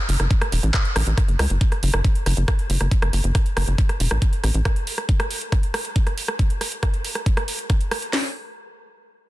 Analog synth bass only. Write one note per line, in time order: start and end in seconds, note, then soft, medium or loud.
0.09 0.17 F#1 medium
0.20 0.27 F#1 medium
0.52 0.60 E1 loud
0.63 0.71 A1 medium
0.96 1.04 A1 medium
1.07 1.14 A1 medium
1.28 1.36 F#1 medium
1.39 1.47 C#2 medium
1.50 1.58 F#1 medium
1.83 1.90 F#1 medium
1.94 2.01 F#1 medium
2.26 2.34 F#1 loud
2.37 2.45 F#1 medium
2.70 2.77 F#1 medium
2.81 2.88 F#1 medium
3.02 3.10 F#1 medium
3.13 3.21 F#1 medium
3.24 3.32 F#1 medium
3.57 3.64 F#1 medium
3.68 3.75 F#1 medium
4.00 4.08 E1 medium
4.11 4.19 A1 medium
4.44 4.51 A1 medium
4.54 4.62 A1 medium